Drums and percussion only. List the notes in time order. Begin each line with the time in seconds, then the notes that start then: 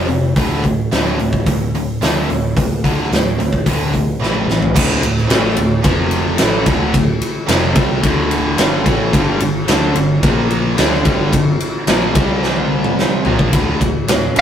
0.09 open hi-hat
0.36 kick, open hi-hat
0.64 kick, open hi-hat
0.92 snare, open hi-hat
1.19 open hi-hat
1.33 kick
1.46 kick, open hi-hat
1.75 open hi-hat
2.02 snare, open hi-hat
2.30 open hi-hat
2.57 kick, open hi-hat
2.84 kick, open hi-hat
3.12 snare, open hi-hat
3.40 open hi-hat
3.53 kick
3.66 kick, open hi-hat
3.94 kick, open hi-hat
4.23 snare
4.35 mid tom
4.50 snare
4.62 floor tom
4.76 kick, crash
5.03 ride
5.17 snare
5.30 snare, ride
5.57 ride
5.84 kick, ride
6.11 ride
6.38 snare, ride
6.66 kick, ride
6.94 kick, ride
7.21 ride
7.48 snare, ride
7.75 kick, ride
8.03 kick, ride
8.31 ride
8.58 snare, ride
8.86 kick, ride
9.13 kick, ride
9.40 ride
9.68 snare, ride
9.96 ride
10.23 kick, ride
10.51 ride
10.78 snare, ride
10.93 snare
11.05 kick, ride
11.33 kick, ride
11.60 ride
11.87 snare, ride
12.15 kick, ride
12.43 snare
12.56 high tom
12.84 mid tom
12.99 snare
13.25 floor tom
13.39 kick
13.53 kick, ride
13.81 kick, ride
14.08 snare, ride
14.36 ride